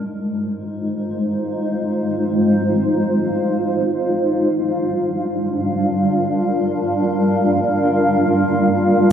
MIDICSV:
0, 0, Header, 1, 2, 480
1, 0, Start_track
1, 0, Tempo, 500000
1, 8757, End_track
2, 0, Start_track
2, 0, Title_t, "Ambient pad"
2, 0, Program_c, 0, 92
2, 0, Note_on_c, 0, 56, 67
2, 0, Note_on_c, 0, 63, 78
2, 0, Note_on_c, 0, 65, 76
2, 0, Note_on_c, 0, 70, 92
2, 0, Note_on_c, 0, 72, 72
2, 338, Note_off_c, 0, 70, 0
2, 691, Note_on_c, 0, 77, 76
2, 3790, Note_off_c, 0, 56, 0
2, 3791, Note_off_c, 0, 63, 0
2, 3796, Note_on_c, 0, 55, 78
2, 4093, Note_on_c, 0, 62, 66
2, 5195, Note_on_c, 0, 70, 71
2, 5797, Note_off_c, 0, 72, 0
2, 8746, Note_off_c, 0, 62, 0
2, 8748, Note_off_c, 0, 55, 0
2, 8757, Note_off_c, 0, 65, 0
2, 8757, Note_off_c, 0, 70, 0
2, 8757, Note_off_c, 0, 77, 0
2, 8757, End_track
0, 0, End_of_file